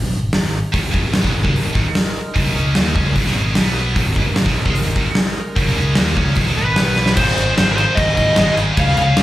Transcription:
0.03 fingered electric bass B1
0.14 fingered electric bass G#1
0.23 fingered electric bass G#1
0.33 fingered electric bass G#1, snare, open hi-hat
0.43 fingered electric bass G#1
0.72 fingered electric bass G#1, distorted electric guitar G#2 D#3, analog synth pad G#3 D#4 A#4, kick, open hi-hat
0.81 fingered electric bass G#1, distorted electric guitar G#2 D#3
0.91 fingered electric bass F#1, distorted electric guitar F#2 C#3, kick
1.02 fingered electric bass G#1, distorted electric guitar G#2 D#3
1.12 distorted electric guitar G#2 D#3, snare, open hi-hat
1.16 fingered electric bass G#1
1.21 fingered electric bass B1, distorted electric guitar B2 F#3, kick
1.33 fingered electric bass G#1, distorted electric guitar G#2 D#3
1.43 fingered electric bass C#2, distorted electric guitar C#3 G#3, kick
1.53 fingered electric bass G#1, distorted electric guitar G#2 D#3, open hi-hat
1.63 fingered electric bass G#1, distorted electric guitar G#2 D#3
1.73 fingered electric bass G#1, distorted electric guitar G#2 D#3, kick
1.95 snare, open hi-hat
2.34 fingered electric bass F#1, distorted electric guitar F#2 C#3, kick, open hi-hat
2.44 fingered electric bass B1, distorted electric guitar B2 F#3
2.55 fingered electric bass C#2, distorted electric guitar C#3 G#3 C#4
2.75 fingered electric bass D#2, distorted electric guitar D#3 A#3 D#4, snare, open hi-hat
2.94 fingered electric bass C#2, distorted electric guitar C#3 G#3 C#4, kick
3.16 fingered electric bass G#1, distorted electric guitar G#2 D#3, kick, open hi-hat
3.25 fingered electric bass B1, distorted electric guitar B2 F#3, snare
3.36 fingered electric bass G#1, distorted electric guitar G#2 D#3 G#3
3.54 fingered electric bass B1, distorted electric guitar B2 F#3 B3, analog synth pad B3 F#4 C#5, snare, open hi-hat
3.96 fingered electric bass G#1, distorted electric guitar G#2 D#3, analog synth pad G#3 D#4 A#4, kick, open hi-hat
4.06 fingered electric bass G#1, distorted electric guitar G#2 D#3
4.16 fingered electric bass F#1, distorted electric guitar F#2 C#3, kick
4.27 fingered electric bass G#1, distorted electric guitar G#2 D#3
4.36 fingered electric bass G#1, distorted electric guitar G#2 D#3, snare, open hi-hat
4.44 fingered electric bass B1, distorted electric guitar B2 F#3, kick
4.55 fingered electric bass G#1, distorted electric guitar G#2 D#3
4.65 fingered electric bass C#2, distorted electric guitar C#3 G#3, kick
4.75 fingered electric bass G#1, distorted electric guitar G#2 D#3, open hi-hat
4.84 fingered electric bass G#1, distorted electric guitar G#2 D#3
4.96 fingered electric bass G#1, distorted electric guitar G#2 D#3, kick
5.15 snare, open hi-hat
5.56 fingered electric bass F#1, distorted electric guitar F#2 C#3, kick, open hi-hat
5.66 fingered electric bass B1, distorted electric guitar B2 F#3
5.76 fingered electric bass C#2, distorted electric guitar C#3 G#3 C#4
5.95 fingered electric bass D#2, distorted electric guitar D#3 A#3 D#4, snare, open hi-hat
6.15 fingered electric bass C#2, distorted electric guitar C#3 G#3 C#4, kick
6.35 fingered electric bass G#1, distorted electric guitar G#2 D#3, kick, open hi-hat
6.46 fingered electric bass B1, distorted electric guitar B2 F#3
6.56 fingered electric bass G#1, distorted electric guitar G#2 D#3 G#3, lead electric guitar B4
6.74 distorted electric guitar B2 F#3 B3, analog synth pad B3 F#4 C#5, snare, open hi-hat
6.80 fingered electric bass B1
6.96 snare
7.06 snare
7.16 fingered electric bass G#1, distorted electric guitar G#2 D#3 G#3, lead electric guitar C5, kick, crash
7.38 fingered electric bass G#1, crash
7.58 fingered electric bass G#1, lead electric guitar C5, snare, crash
7.72 distorted electric guitar G#3, lead electric guitar A#4
7.76 distorted electric guitar G#2 D#3, lead electric guitar C5, crash
7.95 fingered electric bass G#1, lead electric guitar D#5, kick, crash
8.17 fingered electric bass G#1, kick, crash
8.36 fingered electric bass G#1, distorted electric guitar G#2 D#3 G#3, snare, crash
8.56 fingered electric bass G#1, crash
8.75 fingered electric bass C#2, distorted electric guitar C#3 G#3 C#4, kick, crash
8.80 lead electric guitar F5
8.97 fingered electric bass C#2, lead electric guitar F5, crash
9.17 fingered electric bass C#2, snare, crash

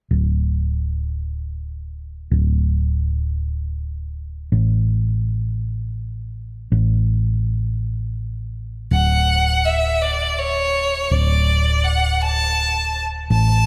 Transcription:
0.11 fingered electric bass D1
2.31 fingered electric bass D1
4.52 fingered electric bass A1
6.72 fingered electric bass A1
8.91 fingered electric bass D1, violin F#5
9.65 violin E5
10.02 violin D5
10.39 violin C#5
11.11 fingered electric bass D1, violin D5
11.85 violin F#5
12.22 violin A5
13.30 fingered electric bass A1, violin A5

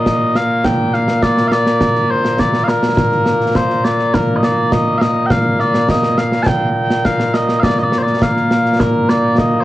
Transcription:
Already playing: bagpipes A#2 A#3 D#5
0.06 concert bass drum, snare
0.35 bagpipes F5, snare
0.64 bagpipes G5, concert bass drum, snare
0.93 bagpipes F5, snare
1.08 snare
1.22 bagpipes D5, concert bass drum, snare
1.37 snare
1.48 bagpipes F5
1.52 bagpipes D5, snare
1.66 snare
1.81 concert bass drum, snare
1.95 snare
2.11 bagpipes C5
2.25 snare
2.39 bagpipes D5, concert bass drum, snare
2.53 snare
2.64 bagpipes F5
2.68 bagpipes A#4, snare
2.83 snare
2.97 concert bass drum, snare
3.12 snare
3.26 snare
3.41 snare
3.55 bagpipes C5, concert bass drum, snare
3.70 snare
3.85 bagpipes D5, snare
3.99 snare
4.14 bagpipes A#4, concert bass drum, snare
4.36 bagpipes D#5
4.43 bagpipes D5, snare
4.72 bagpipes D#5, concert bass drum, snare
4.98 bagpipes D#5 F5, snare
5.26 bagpipes G5
5.30 bagpipes F5, concert bass drum, snare
5.60 bagpipes D5, snare
5.74 snare
5.88 bagpipes D#5, concert bass drum, snare
6.03 snare
6.18 bagpipes F5, snare
6.32 snare
6.43 bagpipes A5, concert bass drum, snare
6.47 bagpipes G5
6.91 snare
7.05 bagpipes F5, concert bass drum, snare
7.20 snare
7.34 bagpipes D#5, snare
7.49 snare
7.60 bagpipes D5 F5, concert bass drum, snare
7.78 bagpipes D#5, snare
7.83 bagpipes D5
7.92 snare
7.98 bagpipes C5
8.03 bagpipes D5
8.07 snare
8.22 bagpipes F5, concert bass drum, snare
8.37 snare
8.51 snare
8.65 snare
8.80 bagpipes A#4, concert bass drum, snare
9.09 bagpipes D5, snare
9.38 bagpipes D#5, concert bass drum, snare
9.61 bagpipes C5

